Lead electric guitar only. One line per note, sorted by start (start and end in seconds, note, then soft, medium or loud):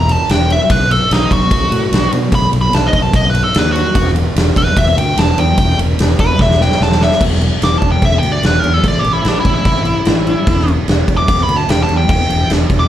0.12 0.30 A5 medium
0.31 0.50 G5 medium
0.52 0.71 E5 medium
0.71 0.91 B4 medium
0.92 1.11 A4 medium
1.13 1.31 D#4 loud
1.33 2.11 F#4 medium
2.35 2.47 B5 loud
2.61 2.74 B5 medium
2.74 2.87 A5 loud
2.88 3.01 D#5 medium
3.02 3.15 A5 loud
3.15 3.28 D#5 loud
3.30 3.42 B4 loud
3.44 3.58 A4 medium
3.58 3.70 B4 loud
3.72 4.10 F#4 loud
4.58 4.77 B4 loud
4.78 4.97 E5 loud
4.98 5.17 G5 medium
5.19 5.38 A5 loud
5.39 5.78 G5 loud
6.20 6.40 B4 loud
6.42 6.61 E5 loud
6.62 6.81 G5 loud
6.83 7.02 A5 loud
7.03 7.22 E5 loud
7.64 7.76 D6 loud
7.78 7.90 A5 medium
7.92 8.04 G5 medium
8.05 8.17 E5 medium
8.18 8.31 G5 loud
8.32 8.44 D5 loud
8.46 8.59 B4 medium
8.59 8.74 A#4 medium
8.74 8.85 A4 loud
8.88 8.99 D5 loud
8.99 9.13 G4 medium
9.13 9.28 E4 medium
9.28 9.39 D4 medium
9.40 9.52 E4 medium
9.54 10.72 E4 loud
11.17 11.42 D6 loud
11.43 11.56 B5 loud
11.56 11.69 A5 medium
11.70 11.83 G5 medium
11.83 11.96 A5 medium
11.97 12.09 G5 loud
12.10 12.49 G5 loud
12.79 12.88 D6 loud